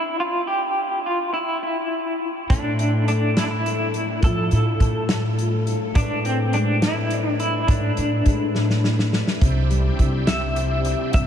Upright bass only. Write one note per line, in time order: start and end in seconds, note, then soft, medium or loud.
2.50 3.43 A2 medium
4.23 4.46 F3 medium
4.52 4.75 A2 medium
4.80 5.73 A2 medium
5.95 6.89 A2 medium
7.68 7.92 G#2 medium
7.98 8.21 A2 medium
8.26 9.19 A2 medium
9.42 9.88 C2 medium
9.99 10.92 C2 medium
11.14 11.27 G2 medium